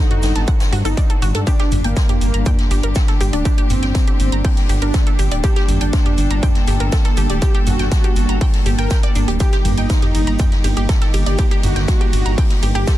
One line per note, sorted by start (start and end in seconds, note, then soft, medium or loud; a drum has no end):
0.00 1.43 A2 medium
0.00 9.36 D3 medium
0.00 1.43 F#3 medium
0.00 1.45 C4 medium
0.00 9.40 D4 medium
0.00 0.18 D#4 medium
0.00 1.43 F#4 medium
0.00 1.47 A4 medium
0.00 1.47 F#5 medium
0.11 0.15 F#4 medium
0.11 closed hi-hat soft
0.11 mid tom medium
0.22 0.33 G1 medium
0.22 0.42 D#4 medium
0.22 snare loud
0.22 open hi-hat medium
0.22 shaker medium
0.35 0.45 G1 medium
0.35 0.45 A5 medium
0.35 snare soft
0.35 closed hi-hat soft
0.47 0.52 F#5 medium
0.47 kick loud
0.47 closed hi-hat medium
0.47 shaker medium
0.60 snare loud
0.60 closed hi-hat soft
0.60 shaker medium
0.73 0.83 G2 medium
0.73 0.79 F#4 loud
0.73 open hi-hat loud
0.85 0.95 G1 medium
0.85 1.04 D#4 medium
0.85 0.91 A4 loud
0.85 closed hi-hat soft
0.85 shaker medium
0.97 1.04 D5 medium
0.97 kick loud
0.97 closed hi-hat medium
0.97 shaker medium
1.10 1.20 A4 medium
1.10 closed hi-hat medium
1.22 1.32 G1 loud
1.22 1.29 F#4 loud
1.22 open hi-hat medium
1.22 shaker medium
1.34 1.45 G2 medium
1.34 1.41 A4 loud
1.34 closed hi-hat soft
1.47 12.98 A#2 medium
1.47 12.98 G3 medium
1.47 1.76 D4 loud
1.47 9.36 D4 medium
1.47 1.54 G4 loud
1.47 5.40 G4 medium
1.47 kick loud
1.47 closed hi-hat medium
1.47 shaker medium
1.59 1.63 G4 loud
1.59 snare soft
1.59 closed hi-hat soft
1.72 1.82 G1 loud
1.72 12.98 A#3 medium
1.72 mid tom medium
1.72 open hi-hat loud
1.72 shaker medium
1.84 1.94 G1 medium
1.84 2.13 A#3 loud
1.84 1.91 G5 medium
1.84 closed hi-hat soft
1.96 kick loud
1.96 snare loud
1.96 closed hi-hat medium
1.96 shaker medium
2.09 2.13 G4 medium
2.09 snare soft
2.09 closed hi-hat soft
2.09 mid tom medium
2.13 12.98 G5 medium
2.21 2.31 G1 medium
2.21 2.50 A#3 loud
2.21 open hi-hat loud
2.21 shaker medium
2.34 2.44 G1 medium
2.34 2.44 A#5 medium
2.34 closed hi-hat soft
2.46 2.50 G5 medium
2.46 kick loud
2.46 closed hi-hat medium
2.46 mid tom medium
2.46 shaker medium
2.59 snare medium
2.59 closed hi-hat soft
2.70 2.81 G1 medium
2.70 2.81 G4 medium
2.70 snare soft
2.70 open hi-hat loud
2.70 shaker medium
2.83 2.93 G1 medium
2.83 2.87 A#4 medium
2.83 closed hi-hat soft
2.95 3.02 A4 medium
2.95 kick loud
2.95 snare loud
2.95 closed hi-hat medium
2.95 shaker medium
3.08 3.18 A4 medium
3.08 snare soft
3.08 closed hi-hat medium
3.20 3.31 G1 loud
3.20 3.25 G4 medium
3.20 open hi-hat loud
3.20 shaker medium
3.33 3.43 D1 medium
3.33 3.62 D4 loud
3.33 3.40 D5 medium
3.33 closed hi-hat soft
3.45 3.52 G4 loud
3.45 kick loud
3.45 closed hi-hat medium
3.45 shaker medium
3.58 3.62 G4 loud
3.58 closed hi-hat soft
3.70 3.80 G1 loud
3.70 3.89 C4 medium
3.70 mid tom medium
3.70 open hi-hat loud
3.70 shaker medium
3.82 3.93 G1 medium
3.82 3.89 G5 medium
3.82 snare soft
3.82 closed hi-hat soft
3.94 4.14 C4 medium
3.94 kick loud
3.94 snare loud
3.94 closed hi-hat medium
3.94 shaker medium
4.07 4.11 G4 medium
4.07 closed hi-hat soft
4.20 4.30 G1 medium
4.20 4.39 C4 medium
4.20 open hi-hat loud
4.20 shaker medium
4.32 4.42 G1 medium
4.32 4.42 A#5 medium
4.32 closed hi-hat soft
4.45 4.48 G5 medium
4.45 kick loud
4.45 closed hi-hat medium
4.45 open hi-hat medium
4.57 snare soft
4.57 closed hi-hat soft
4.69 4.79 G1 medium
4.69 4.79 G4 medium
4.69 open hi-hat loud
4.69 shaker medium
4.82 4.92 G1 medium
4.82 5.01 D4 medium
4.82 4.86 A#4 medium
4.82 closed hi-hat soft
4.94 5.01 A4 medium
4.94 kick loud
4.94 snare loud
4.94 closed hi-hat medium
4.94 shaker medium
5.07 5.16 A4 medium
5.07 closed hi-hat medium
5.19 5.29 G1 medium
5.19 5.23 G4 medium
5.19 open hi-hat medium
5.19 shaker medium
5.31 5.41 D1 medium
5.31 5.38 D5 medium
5.31 closed hi-hat soft
5.44 5.73 G4 loud
5.44 5.50 G4 loud
5.44 9.36 A4 medium
5.44 kick loud
5.44 closed hi-hat medium
5.44 shaker medium
5.56 5.60 G4 loud
5.56 snare medium
5.56 closed hi-hat soft
5.68 5.78 G1 loud
5.68 mid tom medium
5.68 open hi-hat loud
5.68 shaker medium
5.81 5.91 G1 medium
5.81 6.10 D4 loud
5.81 5.87 G5 medium
5.81 closed hi-hat soft
5.93 kick loud
5.93 snare loud
5.93 closed hi-hat medium
5.93 shaker medium
6.05 6.10 G4 medium
6.05 snare soft
6.05 closed hi-hat soft
6.05 mid tom medium
6.18 6.28 G1 medium
6.18 6.47 D4 medium
6.18 open hi-hat loud
6.18 shaker medium
6.31 6.40 G1 medium
6.31 6.40 A#5 medium
6.31 closed hi-hat soft
6.43 6.47 G5 medium
6.43 kick loud
6.43 closed hi-hat medium
6.43 mid tom medium
6.43 shaker medium
6.55 snare medium
6.55 closed hi-hat soft
6.67 6.78 G1 loud
6.67 6.78 G4 medium
6.67 snare soft
6.67 open hi-hat loud
6.67 shaker medium
6.80 6.90 G1 medium
6.80 6.84 A#4 medium
6.80 closed hi-hat soft
6.92 6.99 A4 medium
6.92 kick loud
6.92 snare loud
6.92 closed hi-hat medium
6.92 shaker medium
7.05 7.15 A4 medium
7.05 snare soft
7.05 closed hi-hat medium
7.17 7.27 G1 medium
7.17 7.21 G4 medium
7.17 open hi-hat medium
7.17 shaker medium
7.30 7.40 D1 medium
7.30 7.59 G4 loud
7.30 7.36 D5 medium
7.30 closed hi-hat soft
7.42 7.49 G4 loud
7.42 kick loud
7.42 closed hi-hat medium
7.42 shaker medium
7.55 7.58 G4 loud
7.55 closed hi-hat soft
7.67 7.77 G1 medium
7.67 7.86 F#4 medium
7.67 mid tom medium
7.67 open hi-hat loud
7.67 shaker medium
7.79 7.89 G1 medium
7.79 7.86 G5 medium
7.79 snare medium
7.79 closed hi-hat soft
7.92 8.11 F#4 medium
7.92 kick loud
7.92 snare loud
7.92 closed hi-hat medium
7.92 shaker loud
8.04 8.08 G4 medium
8.04 closed hi-hat soft
8.16 8.26 G1 medium
8.16 8.36 F#4 medium
8.16 open hi-hat loud
8.16 shaker medium
8.29 8.39 G1 medium
8.29 8.39 A#5 medium
8.29 closed hi-hat soft
8.41 8.45 G5 medium
8.41 kick loud
8.41 closed hi-hat medium
8.41 open hi-hat medium
8.54 snare soft
8.54 closed hi-hat soft
8.66 8.76 G1 medium
8.66 8.70 G4 medium
8.66 open hi-hat loud
8.66 shaker medium
8.78 8.88 G1 medium
8.78 8.98 A#4 medium
8.78 8.85 G5 loud
8.78 closed hi-hat soft
8.91 8.97 G5 loud
8.91 kick loud
8.91 snare loud
8.91 closed hi-hat medium
8.91 shaker medium
9.03 9.13 D5 loud
9.03 closed hi-hat medium
9.15 9.26 G1 loud
9.15 9.22 D4 medium
9.15 open hi-hat loud
9.15 shaker medium
9.28 9.38 D1 medium
9.28 9.34 G4 medium
9.28 closed hi-hat soft
9.40 12.98 D#3 medium
9.40 12.98 D#4 medium
9.40 12.98 G4 medium
9.40 9.69 G4 loud
9.40 9.47 G4 medium
9.40 kick loud
9.40 closed hi-hat medium
9.40 ride medium
9.40 shaker medium
9.52 9.57 G4 loud
9.52 snare soft
9.52 closed hi-hat soft
9.65 9.75 G1 loud
9.65 mid tom medium
9.65 open hi-hat loud
9.65 ride medium
9.65 shaker medium
9.77 9.88 G1 medium
9.77 10.07 D#4 medium
9.77 9.84 G5 medium
9.77 closed hi-hat soft
9.90 kick loud
9.90 snare loud
9.90 closed hi-hat medium
9.90 ride medium
9.90 shaker medium
10.02 10.06 G4 medium
10.02 snare soft
10.02 closed hi-hat soft
10.02 mid tom medium
10.15 10.25 G1 medium
10.15 10.44 D#4 medium
10.15 open hi-hat loud
10.15 ride medium
10.15 shaker medium
10.27 10.37 G1 medium
10.27 10.37 A#5 medium
10.27 closed hi-hat soft
10.39 10.43 G5 medium
10.39 kick loud
10.39 closed hi-hat medium
10.39 mid tom medium
10.39 ride soft
10.39 shaker medium
10.52 snare soft
10.52 closed hi-hat soft
10.64 10.74 G1 loud
10.64 10.74 G4 medium
10.64 snare soft
10.64 open hi-hat loud
10.64 ride medium
10.64 shaker medium
10.77 10.87 G1 medium
10.77 10.86 G4 loud
10.77 closed hi-hat soft
10.89 10.96 A4 medium
10.89 kick loud
10.89 snare loud
10.89 closed hi-hat medium
10.89 ride medium
10.89 shaker loud
11.02 11.11 A4 medium
11.02 snare medium
11.02 closed hi-hat medium
11.14 11.24 G1 medium
11.14 11.18 G4 medium
11.14 open hi-hat medium
11.14 ride medium
11.14 shaker medium
11.26 11.36 G1 medium
11.26 11.55 G4 loud
11.26 11.33 D5 medium
11.26 closed hi-hat soft
11.38 11.45 G4 medium
11.38 kick loud
11.38 closed hi-hat medium
11.38 ride medium
11.38 shaker medium
11.51 11.55 G4 loud
11.51 closed hi-hat soft
11.63 11.74 G1 loud
11.63 11.83 F#4 medium
11.63 mid tom medium
11.63 open hi-hat loud
11.63 ride medium
11.63 shaker medium
11.76 11.86 G1 medium
11.76 11.82 G5 medium
11.76 snare medium
11.76 closed hi-hat soft
11.88 12.08 F#4 medium
11.88 kick loud
11.88 snare loud
11.88 closed hi-hat medium
11.88 ride medium
11.88 shaker medium
12.01 12.05 G4 medium
12.01 closed hi-hat soft
12.13 12.23 G1 medium
12.13 12.32 F#4 medium
12.13 open hi-hat loud
12.13 ride medium
12.13 shaker medium
12.26 12.35 G1 medium
12.26 12.35 A#5 medium
12.26 closed hi-hat soft
12.38 12.42 G5 medium
12.38 kick loud
12.38 closed hi-hat medium
12.38 open hi-hat medium
12.38 ride medium
12.50 snare soft
12.50 closed hi-hat soft
12.62 12.73 G1 loud
12.62 12.72 G4 medium
12.62 open hi-hat loud
12.62 ride medium
12.62 shaker medium
12.75 12.85 G1 medium
12.75 12.85 G4 loud
12.75 12.94 G4 medium
12.75 closed hi-hat soft
12.87 12.94 A4 medium
12.87 kick loud
12.87 snare loud
12.87 closed hi-hat medium
12.87 ride medium
12.87 shaker medium